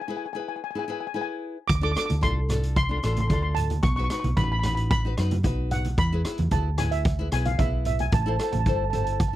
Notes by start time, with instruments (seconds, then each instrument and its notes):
0.02 steel pan G#5
0.08 nylon-string guitar E4 G#4 B4, steel pan G#5
0.17 steel pan G#5
0.26 steel pan G#5
0.33 nylon-string guitar E4 G#4 B4, steel pan G#5
0.40 steel pan G#5
0.48 steel pan G#5
0.56 steel pan G#5
0.64 steel pan G#5
0.71 steel pan G#5
0.75 nylon-string guitar E4 G#4 B4, steel pan G#5
0.85 nylon-string guitar E4, steel pan G#5
0.89 nylon-string guitar G#4 B4, steel pan G#5
1.00 steel pan G#5
1.07 steel pan G#5
1.14 nylon-string guitar E4 G#4 B4, steel pan G#5
1.21 steel pan G#5
1.68 fingered electric bass D2, steel pan D6, kick, closed hi-hat
1.81 nylon-string guitar D4 F4 A4, steel pan D6
1.92 nylon-string guitar D4, steel pan D6
1.96 nylon-string guitar F4 A4, steel pan D6, cross-stick, closed hi-hat
2.06 steel pan D6, closed hi-hat
2.10 fingered electric bass D2, high conga
2.21 fingered electric bass C2, nylon-string guitar D4 F4 A4, steel pan C6, kick, closed hi-hat, low conga
2.49 nylon-string guitar D4 F4 A4, cross-stick, closed hi-hat, low conga
2.63 closed hi-hat
2.76 steel pan C6, kick, closed hi-hat
2.83 steel pan C6
2.89 nylon-string guitar D4 F4 A4, steel pan C6
2.97 steel pan C6
3.03 fingered electric bass A1, nylon-string guitar D4 F4 A4, steel pan C6, cross-stick, closed hi-hat
3.16 closed hi-hat, high conga
3.21 steel pan C6
3.28 fingered electric bass D2, nylon-string guitar D4 F4 A4, steel pan C6, kick, closed hi-hat, high conga
3.34 steel pan C6
3.42 steel pan C6
3.55 steel pan A5, closed hi-hat, low conga
3.70 closed hi-hat, high conga
3.82 fingered electric bass B1, steel pan C#6, kick, closed hi-hat
3.89 steel pan C#6
3.96 nylon-string guitar D#4 F#4 B4, steel pan C#6
4.04 steel pan C#6
4.10 nylon-string guitar D#4 F#4 B4, steel pan C#6, cross-stick, closed hi-hat
4.20 steel pan C#6
4.24 fingered electric bass B1, closed hi-hat, high conga
4.37 fingered electric bass A1, nylon-string guitar D#4 F#4 B4, steel pan B5, kick, closed hi-hat, low conga
4.44 steel pan B5
4.52 steel pan B5
4.59 nylon-string guitar D#4, steel pan B5, cross-stick, closed hi-hat
4.64 nylon-string guitar F#4 B4, steel pan B5, low conga
4.75 steel pan B5, closed hi-hat
4.90 steel pan B5, kick, closed hi-hat
5.05 nylon-string guitar D#4 F#4 B4
5.17 fingered electric bass F#2, nylon-string guitar D#4 F#4 B4, cross-stick, closed hi-hat
5.31 closed hi-hat, high conga
5.43 fingered electric bass B1, nylon-string guitar D#4 F#4 B4, kick, closed hi-hat, high conga
5.71 steel pan F#5, closed hi-hat, low conga
5.85 closed hi-hat, high conga
5.98 fingered electric bass E2, steel pan B5, kick, closed hi-hat
6.12 nylon-string guitar E4 G#4 B4
6.25 nylon-string guitar E4 G#4 B4, cross-stick, closed hi-hat
6.38 fingered electric bass E2, closed hi-hat, high conga
6.51 fingered electric bass D2, nylon-string guitar E4 G#4 B4, steel pan A5, kick, closed hi-hat, low conga
6.78 nylon-string guitar E4 G#4 B4, steel pan G#5, cross-stick, closed hi-hat, low conga
6.91 steel pan E5, closed hi-hat
7.05 kick, closed hi-hat
7.19 nylon-string guitar E4 G#4 B4
7.32 fingered electric bass B1, nylon-string guitar E4 G#4 B4, steel pan G#5, cross-stick, closed hi-hat
7.45 steel pan F5, closed hi-hat, high conga
7.59 fingered electric bass B1, nylon-string guitar E4 G#4 B4, steel pan E5, kick, closed hi-hat, high conga
7.85 steel pan E5, closed hi-hat, low conga
7.99 steel pan G#5, closed hi-hat, high conga
8.12 fingered electric bass A1, steel pan A5, kick, closed hi-hat
8.22 nylon-string guitar E4, steel pan A5
8.27 nylon-string guitar A4 C5, steel pan A5
8.36 nylon-string guitar E4 A4, steel pan A5, cross-stick, closed hi-hat
8.41 nylon-string guitar C5, steel pan A5
8.52 fingered electric bass A1, steel pan A5, closed hi-hat, high conga
8.59 steel pan A5
8.66 fingered electric bass G1, nylon-string guitar E4 A4 C5, steel pan A5, kick, closed hi-hat, low conga
8.76 steel pan A5
8.84 steel pan A5
8.90 nylon-string guitar E4 A4, steel pan A5, closed hi-hat, low conga
8.94 nylon-string guitar C5, steel pan A5
9.04 steel pan A5, closed hi-hat
9.13 steel pan A5
9.20 steel pan A5, kick, closed hi-hat
9.28 steel pan A5